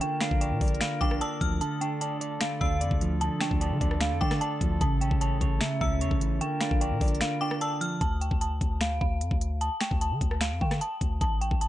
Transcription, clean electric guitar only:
0.01 D3
0.21 D4
0.41 D5
0.62 D5
0.81 D3
1.01 D4
1.22 D5
1.41 F3
1.61 D3
1.81 D4
2.02 D5
2.21 D5
2.41 D3
2.61 D4
2.81 D5
3.01 F3
3.21 D3
3.41 D4
3.61 D5
3.81 D5
4.01 D3
4.21 D4
4.41 D5
4.61 F3
4.81 C#3
5.01 C#4
5.21 C#5
5.41 C#5
5.61 C#3
5.81 C#4
6.01 C#5
6.21 E3
6.41 D3
6.61 D4
6.81 D5
7.02 D5
7.21 D3
7.42 D4
7.62 D5
7.81 F3

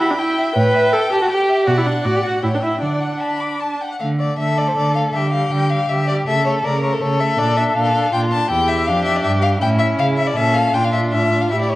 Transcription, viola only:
0.00 E4
0.11 D4
0.18 E4
0.56 B4
0.93 A4
1.12 G4
1.22 F#4
1.30 G4
1.67 F#4
1.78 E4
1.87 D4
2.06 F#4
2.16 G4
2.25 F#4
2.44 E4
2.55 D4
2.63 E4
2.82 D4
4.01 A3
4.21 A3
4.39 A3
4.58 A3
4.77 A3
4.96 A3
5.15 G3
5.33 G3
5.52 G3
5.72 G3
5.90 G3
6.09 G3
6.28 A3
6.46 A3
6.65 A3
6.83 A3
7.02 A3
7.21 A3
7.39 D4
7.58 D4
7.77 D4
7.95 D4
8.14 D4
8.33 D4
8.51 E4
8.89 D4
9.62 C#4
10.37 C#4
10.75 D4
11.13 F4
11.51 G4

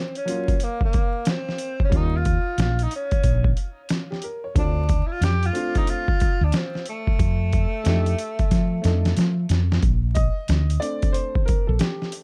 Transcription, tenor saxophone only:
Already playing: C4
0.18 C#4
0.64 A#3
0.84 A#3
1.29 C4
1.84 C#4
1.96 D#4
2.17 F4
2.61 F4
2.83 D#4
2.96 C#4
4.59 D4
5.07 E4
5.12 F4
5.24 G4
5.46 F4
5.78 D#4
5.90 F4
6.44 D4
6.57 C4
6.90 A3

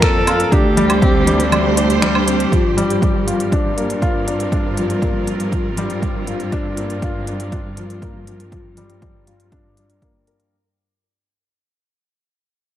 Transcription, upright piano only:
Already playing: F3 A#3 C4 F4 A#4
0.02 A#4
0.27 F4
0.52 D4
0.77 G3
1.03 C4
1.27 G3
1.52 G3
1.77 D4
2.02 G3
2.27 C4
2.53 F3
2.77 G3
3.02 G3
3.27 F4
3.52 D4
3.77 A#3
4.02 F4
4.27 D4
4.53 D4
4.77 F3
5.03 A#3
5.28 F3
5.53 F3
5.78 G3
6.02 G3
6.28 F4
6.53 D4
6.78 A#3
7.03 F4
7.28 D4
7.53 D4
7.78 F3
8.02 A#3
8.27 F3
8.52 F3
8.77 G3
9.02 G3
9.27 F4
9.53 D4
9.78 D4
10.03 A#3
10.28 A#4

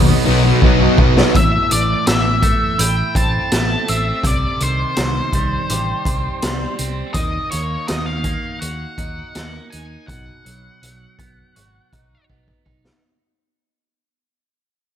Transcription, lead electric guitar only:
1.36 E5
1.72 D5
2.08 E5
2.80 G5
3.17 A5
3.89 E5
4.27 D5
4.63 C5
7.14 D#5
7.51 C#5
7.88 D#5
8.06 F5
8.59 F#5
9.70 G#5
10.07 F#5

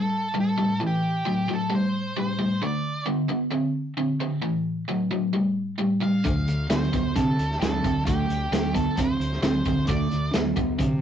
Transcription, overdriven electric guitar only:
Already playing: A2 G3
0.34 A2 G3
0.58 A2 G3
0.80 A2 E3
1.26 A2 F#3
1.48 A2 F#3
1.70 A2 G3
2.17 A2 G3
2.39 A2 G3
2.62 D3 A3
3.06 D3 B3
3.29 D3 B3
3.51 D3 C4
3.97 D3 C4
4.20 D3 C4
4.42 A2 E3
4.88 A2 F#3
5.11 A2 F#3
5.34 A2 G3
5.79 A2 G3
6.01 A2 G3
6.25 D3 A3
6.70 D3 B3
6.93 D3 B3
7.16 D3 C4
7.62 D3 C4
7.84 D3 C4
8.07 D3 A3
8.52 D3 B3
8.74 D3 B3
8.98 D3 C4
9.43 D3 C4
9.66 D3 C4
9.89 D3 A3
10.35 D3 B3
10.56 D3 B3
10.79 D3 C4

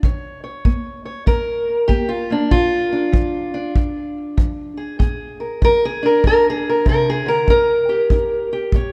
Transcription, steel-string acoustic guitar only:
0.04 D#3 C#5
0.44 C#5
0.65 A#3
1.05 C#5
1.26 A#2 A#4
1.88 A#3 G4
2.09 F4
2.30 A#3 D4
2.51 A#2 F4
2.92 D4
3.12 F3
3.54 D4
3.76 F2
4.37 F3
4.77 G#4
4.99 A#2 G#4
5.40 A#4
5.62 F3 A#4
5.85 G#4
6.03 D4 A#4
6.25 F2 A#4
6.50 G#4
6.70 A#4
6.85 C3 A#4
7.10 G#4
7.26 D3 A#4
7.47 D#3 A#4
7.89 G4
8.11 D#4
8.53 G4
8.75 A#2 C#5

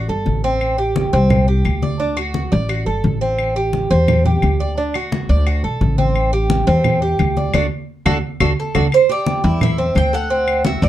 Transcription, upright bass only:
0.09 G1
0.26 A1
1.13 C2
1.65 D2
2.52 A1
2.87 G1
3.04 A1
3.91 E2
4.43 D2
5.29 D2
5.64 B1
5.81 A1
6.67 E2
7.19 D2
7.54 D2
8.06 D2
8.40 D2
8.75 D2
9.44 E2
9.96 D2
10.82 D2

